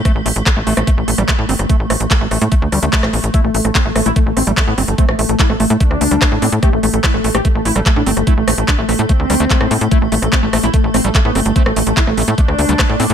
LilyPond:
<<
  \new Staff \with { instrumentName = "Acid bass" } { \time 4/4 \key g \mixolydian \tempo 4 = 146 a16 r16 a16 r16 a16 a16 a16 a16 a16 r16 a16 g16 a16 r16 c'16 r16 | a16 r16 a16 r16 a16 a16 a16 a16 a16 r16 g16 a16 a8 b16 r16 | a16 r16 a16 r16 a16 a16 a16 a16 a16 r16 a16 g16 a16 r16 c'16 r16 | a16 r16 a16 r16 a16 a16 a16 a16 a16 r16 a16 g16 a16 r16 c'16 r16 |
a16 r16 a16 r16 a16 a16 a16 a16 a16 r16 a16 g16 a16 r16 c'16 r16 | a16 r16 a16 r16 a16 a16 a16 a16 a16 r16 g16 a16 a16 r16 a16 r16 | a16 r16 a16 r16 a16 a16 a16 a16 a16 r16 a16 g16 a16 r16 c'16 r16 | a16 r16 a16 r16 a16 a16 a16 a16 a16 r16 a16 g16 a16 r16 c'16 r16 | }
  \new Staff \with { instrumentName = "Analog synth lead" } { \time 4/4 \key g \mixolydian r1 | r1 | e'16 a16 a16 a16 c'16 a16 a16 e'16 a16 a16 c'16 a16 a16 b16 a16 a16 | c'16 a16 a16 a16 e'16 a16 a16 a16 d'4.~ d'16 r16 |
g'16 a16 a16 a16 e'16 a16 a16 g'16 a16 a16 e'16 a16 a16 d'16 a16 a16 | e'16 a16 a16 a16 d'16 a16 a16 a16 c'4.~ c'16 r16 | e'16 a16 a16 a16 c'16 a16 a16 e'16 a16 a16 c'16 a16 a16 b16 a16 a16 | c'16 a16 a16 a16 e'16 a16 a16 a16 d'4.~ d'16 r16 | }
  \new Staff \with { instrumentName = "Synth drone" } { \time 4/4 \key g \mixolydian a1~ | a1 | a1~ | a1~ |
a1~ | a1~ | a1~ | a1 | }
  \new Staff \with { instrumentName = "Analog synth bass" } { \clef bass \time 4/4 \key g \mixolydian r16 a,,16 a,,16 a,,16 r16 a,,16 a,,16 a,,16 r16 a,,16 a,,16 a,,16 r16 a,16 g,,16 g,,16 | r16 a,,16 a,,16 a,,16 r16 a,,16 a,,16 a,16 r16 d,16 d,16 d,16 r16 a,,16 a,,16 a,,16 | r16 a,,16 a,,16 a,,16 r16 a,,16 a,,16 a,,16 r16 a,,16 a,,16 a,,16 r16 a,16 g,,16 g,,16 | r16 a,,16 a,,16 a,,16 r16 a,,16 a,,16 a,16 r16 d,16 d,16 d,16 r16 a,16 a,16 a,16 |
r16 a,,16 a,,16 a,,16 r16 a,,16 a,,16 a,,16 r16 a,,16 a,,16 a,,16 r16 a,16 g,,16 g,,16 | r16 a,,16 a,,16 a,,16 r16 a,,16 a,,16 a,16 r16 d,16 d,16 d,16 r16 a,16 a,16 a,16 | r16 a,,16 a,,16 a,,16 r16 a,,16 a,,16 a,,16 r16 a,,16 a,,16 a,,16 r16 a,16 g,,16 g,,16 | r16 a,,16 a,,16 a,,16 r16 a,,16 a,,16 a,16 r16 d,16 d,16 d,16 r16 a,16 a,16 a,16 | }
  \new DrumStaff \with { instrumentName = "Drums" } \drummode { \time 4/4 <hh bd ss>8 hho16 hh16 <hc hh bd ss>8 hho16 <hh ss>16 <hh bd>8 hho16 <hh ss>16 <hc hh bd>8 hho16 <hh ss>16 | <hh bd>8 <hho ss>16 hh16 <hc hh bd>8 <hho ss>16 hh16 <hh bd>8 <hho ss>16 hh16 <hc hh bd>16 <hc ss>16 hho16 hh16 | <hh bd>8 hho16 <hh ss>16 <hc hh bd>8 <hho ss>16 hh16 <hh bd>8 <hho ss>16 hh16 <hc hh bd>8 <hho ss>16 hh16 | <hh bd>16 ss16 hho16 hh16 <hc hh bd>16 ss16 hho16 hh16 <hh bd>16 ss16 hho16 hh16 <hc hh bd ss>8 hho16 hh16 |
<hh bd ss>8 hho16 hh16 <hc hh bd ss>8 hho16 <hh ss>16 <hh bd>8 hho16 <hh ss>16 <hc hh bd>8 hho16 <hh ss>16 | <hh bd>8 <hho ss>16 hh16 <hc hh bd>8 <hho ss>16 hh16 <hh bd>8 <hho ss>16 hh16 <hc hh bd>16 ss16 hho16 hh16 | <hh bd>8 hho16 <hh ss>16 <hc hh bd>8 <hho ss>16 hh16 <hh bd>8 <hho ss>16 hh16 <hc hh bd>8 <hho ss>16 hh16 | <hh bd>16 ss16 hho16 hh16 <hc hh bd>16 ss16 hho16 hh16 <hh bd>16 ss16 hho16 hh16 <hc hh bd ss>8 hho16 hh16 | }
>>